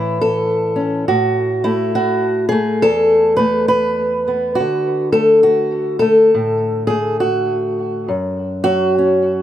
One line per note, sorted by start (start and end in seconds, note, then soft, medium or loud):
0.00 1.07 A2 medium
0.00 1.05 E3 medium
0.00 0.21 E4 medium
0.21 1.09 A4 medium
0.76 1.05 C#4 soft
1.08 2.84 A2 medium
1.08 1.94 F#4 medium
1.64 2.51 A3 soft
1.64 2.82 E4 medium
1.95 2.48 F#4 loud
2.49 3.38 A3 medium
2.49 3.70 G#4 medium
2.82 4.59 E2 medium
2.82 3.36 A4 loud
3.37 4.60 A3 medium
3.37 3.67 B4 loud
3.68 4.55 B4 loud
4.28 4.60 B3 soft
4.55 5.12 F#4 medium
4.60 8.10 D3 medium
5.12 6.01 A3 soft
5.12 5.43 A4 medium
5.43 5.99 F#4 medium
5.99 6.89 A3 medium
5.99 6.87 A4 medium
6.35 8.09 A2 medium
6.87 8.06 A3 medium
6.87 7.20 G#4 medium
7.20 8.08 F#4 medium
8.08 9.42 F#2 medium
8.64 9.42 F#3 medium
8.64 9.42 F#4 loud
8.98 9.42 C#4 soft